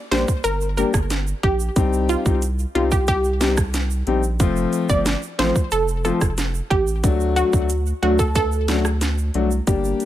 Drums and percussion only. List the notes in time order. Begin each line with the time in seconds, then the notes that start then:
0.12 snare, closed hi-hat
0.28 kick, shaker
0.44 closed hi-hat, shaker
0.61 shaker
0.78 closed hi-hat, shaker
0.94 kick, cross-stick, shaker
1.10 snare, closed hi-hat, shaker
1.27 shaker
1.43 kick, closed hi-hat
1.60 shaker
1.76 kick, closed hi-hat, shaker
1.93 shaker
2.09 closed hi-hat, shaker
2.26 kick, shaker
2.42 closed hi-hat, shaker
2.59 shaker
2.75 closed hi-hat
2.92 kick, shaker
3.07 kick, closed hi-hat, shaker
3.24 shaker
3.41 snare, closed hi-hat, shaker
3.57 kick, cross-stick, shaker
3.74 snare, closed hi-hat, shaker
3.91 shaker
4.07 closed hi-hat
4.23 shaker
4.40 kick, closed hi-hat, shaker
4.56 shaker
4.73 closed hi-hat, shaker
4.89 kick, shaker
5.06 snare, closed hi-hat, shaker
5.23 shaker
5.39 snare, closed hi-hat
5.55 kick, shaker
5.71 closed hi-hat, shaker
5.88 shaker
6.05 closed hi-hat, shaker
6.21 kick, cross-stick, shaker
6.38 snare, closed hi-hat, shaker
6.54 shaker
6.71 kick, closed hi-hat
6.87 shaker
7.04 kick, closed hi-hat, shaker
7.20 shaker
7.36 closed hi-hat, shaker
7.53 kick, shaker
7.70 closed hi-hat, shaker
7.86 shaker
8.03 closed hi-hat
8.19 kick, shaker
8.35 kick, closed hi-hat, high timbale, shaker
8.52 shaker
8.68 snare, closed hi-hat, shaker
8.85 cross-stick, shaker
9.01 snare, closed hi-hat, shaker
9.18 shaker
9.34 closed hi-hat
9.51 shaker
9.67 kick, closed hi-hat, shaker
9.84 shaker
10.00 closed hi-hat, shaker